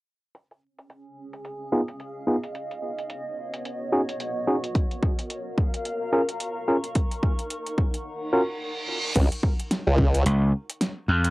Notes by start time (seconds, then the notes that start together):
0.35 C#4, closed hi-hat
0.51 closed hi-hat
0.72 G#4
0.79 closed hi-hat
0.90 closed hi-hat
1.33 D#5 F5, closed hi-hat
1.45 closed hi-hat
1.72 B3 D#4 F4 G#4
1.88 closed hi-hat
2.00 closed hi-hat
2.27 B3 D#4 F4 G#4
2.44 closed hi-hat
2.55 B3, closed hi-hat
2.71 closed hi-hat
2.76 C#5
2.90 F#4
2.99 closed hi-hat
3.10 closed hi-hat
3.54 closed hi-hat
3.65 closed hi-hat
3.92 C#4 D#4 F#4 G#4
4.09 closed hi-hat
4.20 closed hi-hat
4.47 C#4 D#4 F#4 G#4
4.64 closed hi-hat
4.75 A#4, kick, closed hi-hat
4.91 closed hi-hat
5.03 F5, kick
5.12 A#5
5.19 closed hi-hat
5.30 closed hi-hat
5.58 kick
5.74 C#6, closed hi-hat
5.85 closed hi-hat
6.13 C#4 F4 G#4 A#4
6.29 closed hi-hat
6.40 closed hi-hat
6.68 C#4 F4 G#4 A#4
6.84 closed hi-hat
6.95 D#4, kick, closed hi-hat
7.11 closed hi-hat
7.23 kick
7.39 closed hi-hat
7.50 closed hi-hat
7.67 closed hi-hat
7.78 kick
7.94 closed hi-hat
8.06 reverse cymbal
8.33 C#4 F4 F#4 A#4
9.16 C#2, kick, closed hi-hat, crash
9.32 closed hi-hat
9.43 kick
9.60 closed hi-hat
9.71 snare, closed hi-hat
9.87 C#2
9.98 kick
10.14 closed hi-hat
10.26 C#2, closed hi-hat
10.70 closed hi-hat
10.81 snare, closed hi-hat
11.08 F2
11.24 closed hi-hat